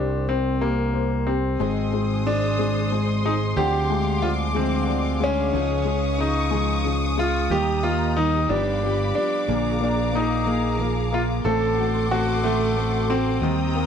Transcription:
Already playing: C2 C4 D4 G4
0.28 C4
0.61 A#3 G4
0.93 C4
1.27 C4 G4
1.58 G#1 G#2 D#3 G#3 C4 D#4 G#4 C5 C6 D#6
1.92 G#3 C4 D#4 G#4
2.25 G#3 C4 D4 G#4
2.58 G#2 D#3 G#3 C4 G#4
2.90 G#3 C4 D#4 G#4
3.23 G#3 C4 D#4 G#4
3.56 D2 D3 F3 G#3 C4 D4 G4 F5 D6
3.90 G#3 C4
4.22 D3 F3 C4 D4 F4 G#4
4.54 D3 F3 G#3 C4 D4 G#4
4.87 D3 F3 C4 D4 G#4
5.20 G#3 C#4 G#4
5.53 C#2 C#3 F3 C#4 D#4 G#4 C#6 D#6
5.85 G#3 C#4 D#4 G#4
6.18 C#3 F3 C#4 D#4 G#4
6.51 C#3 F3 G#3 C#4 D#4 G#4
6.84 C#3 F3 C#4 D#4 G#4
7.18 G#3 C#4 D#4 F4 G#4
7.50 D#2 D#3 G3 A#3 D#4 G4 D#5 A#5
7.83 A#3 D#4 F4 G4
8.16 D#3 G3 A#3 D#4 G4
8.49 G1 G2 D3 F3 G3 B3 D4 F4 G4 F5 B5 D6
8.82 F3 G3 B3 F4 G4
9.14 F3 G3 B3 D4 F4 G4
9.47 A#1 A#2 D3 F3 A#3 D4 G#4 F5 A#5
9.79 F3 A#3 D4 G#4
9.83 D4
10.12 F3 A#3 D#4 G#4
10.46 A#2 F3 A#3 G#4
10.78 F3 A#3 D4 G#4
11.11 F3 A#3 D4 F4 G#4
11.44 A1 A2 D3 A3 C4 F#4 A4 F#5 C6 D6
11.77 A3 C4 F#4 A4
12.10 A3 C4 F#4 A4
12.44 A2 D3 A3 C4 F#4 A4
12.76 A3 C4 F#4 A4
13.09 A3 C4 F#4 A4
13.41 D#2 D#3 G3 A#3 D#4 G4 G5 A#5 D#6
13.75 A#3 D#4 G4

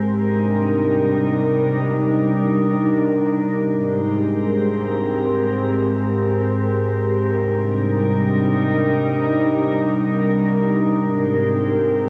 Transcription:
Already playing: A#4
0.08 C3 G3 D4 D#4
3.71 G#2 G#3 C4 G4 A#4
7.35 C3 G3 D4 D#4 A#4
10.99 G#2 G#3 C4 G4

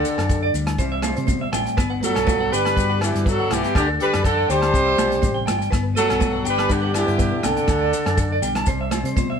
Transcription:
Already playing: D3 D4 G4 A4
0.05 A4, closed hi-hat, muted conga, maracas
0.18 F#2 A4, cross-stick, closed hi-hat, low agogo, maracas
0.29 A4, kick, closed hi-hat, maracas
0.43 D5
0.54 D2 G3, closed hi-hat, maracas
0.67 muted clean electric guitar stroke, cross-stick, closed hi-hat, low agogo, maracas
0.78 C2 E3 G3 C4 E4 C5, muted clean electric guitar stroke, kick, closed hi-hat, muted conga, maracas
0.92 E5
1.02 C5, cross-stick, closed hi-hat, high conga, low agogo, maracas
1.16 C3 C5, closed hi-hat
1.27 B2 C5, kick, closed hi-hat, high conga, maracas
1.41 E5
1.52 A1 A2 G5, cross-stick, closed hi-hat, muted conga, high conga, low agogo, maracas
1.66 G5, closed hi-hat, maracas
1.77 G1 G2 B3 B4, kick, cross-stick, closed hi-hat, muted conga, low agogo, maracas
1.90 F#5
2.01 F#3 F#4 A4 B4, closed hi-hat, muted conga, high conga, maracas
2.15 B1 B4, cross-stick, closed hi-hat, low agogo, maracas
2.27 B4, kick, closed hi-hat, high conga, maracas
2.40 F#5
2.51 G1 D3 G3 G4 B4 G5, closed hi-hat, maracas
2.65 B5, cross-stick, closed hi-hat, low agogo, maracas
2.76 G2 F#4 B4, kick, closed hi-hat, muted conga, maracas
2.90 F#5
3.01 E3 D4 E4 G4 B4, cross-stick, closed hi-hat, low agogo, maracas
3.14 G2 B4, closed hi-hat
3.26 G2 F#3 F#4 A4 B4, kick, closed hi-hat, maracas
3.40 F#5
3.50 B1 E3 B3 E4 G4 F#5, cross-stick, closed hi-hat, muted conga, high conga, low agogo, maracas
3.64 G5, closed hi-hat, maracas
3.75 D2 D3 D4 G4 A4, kick, cross-stick, closed hi-hat, muted conga, low agogo, maracas
3.79 D3
3.88 A4
4.00 G3 G4 A4 B4, closed hi-hat, muted conga
4.13 F#2, cross-stick, closed hi-hat, low agogo, maracas
4.24 D3 E3 D4 A4, kick, closed hi-hat, maracas
4.37 D5
4.48 D2 D3 G3 G4 C5 G5, closed hi-hat, maracas
4.61 A5, cross-stick, closed hi-hat, low agogo, maracas
4.73 C2 C3 G3 C5, kick, closed hi-hat, muted conga, maracas
4.86 E5
4.97 B1 C5, cross-stick, closed hi-hat, high conga, low agogo, maracas
5.11 C5, closed hi-hat
5.22 A1 C5, kick, closed hi-hat, high conga, maracas
5.34 G5
5.46 G1 E3 G5, cross-stick, closed hi-hat, muted conga, high conga, low agogo, maracas
5.59 G5, closed hi-hat, maracas
5.71 G1 G2 B3 B4, kick, cross-stick, closed hi-hat, muted conga, low agogo, maracas
5.95 F#3 F#4 A4 B4, closed hi-hat, muted conga, high conga, maracas
6.08 B1 B4, cross-stick, closed hi-hat, low agogo, maracas
6.20 B4, kick, closed hi-hat, high conga, maracas
6.33 F#5
6.45 G1 D3 G3 G4 B4 G5, closed hi-hat, maracas
6.58 B5, cross-stick, closed hi-hat, low agogo
6.69 G2 D4 G4 B4, kick, closed hi-hat, muted conga, maracas
6.73 D3
6.82 F#5
6.94 D3 D4 E4 G4 B4, cross-stick, closed hi-hat, low agogo, maracas
7.07 G2 B4, closed hi-hat
7.18 B2 B4, kick, closed hi-hat, maracas
7.42 B1 C3 D3 D4 A4 G5, cross-stick, closed hi-hat, high conga, low agogo, maracas
7.57 G5, closed hi-hat, maracas
7.68 D2 D3 D4, muted clean electric guitar stroke, kick, cross-stick, closed hi-hat, muted conga, low agogo, maracas
7.81 D5
7.92 A4, closed hi-hat, muted conga, maracas
8.06 F#2 A4, cross-stick, closed hi-hat, low agogo, maracas
8.17 A4, kick, closed hi-hat, maracas
8.32 D5
8.42 B1 G3 G5, closed hi-hat, maracas
8.55 A5, cross-stick, closed hi-hat, low agogo, maracas
8.66 C2 C3 G3 C5, kick, closed hi-hat, muted conga, maracas
8.81 E5
8.91 C5, cross-stick, closed hi-hat, high conga, low agogo, maracas
9.03 C3 C5, closed hi-hat
9.17 B2 C5, kick, closed hi-hat, high conga, maracas
9.30 E5

